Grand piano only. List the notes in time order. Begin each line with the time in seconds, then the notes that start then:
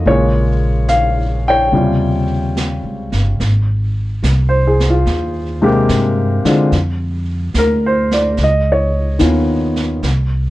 0.06 C#3 G#3 A#3 F4 G#4 C#5
0.89 F5
1.48 C#5 G5
1.72 C3 C#3 G3 F4
4.49 C5
4.67 G#4
4.90 F4
5.62 C3 G#3 A#3 G4
6.45 D3 G#3 C4 F4
7.58 A#4
7.86 C5
8.13 D5
8.43 D#5
8.72 C#5
9.19 D#3 B3 C#4 F4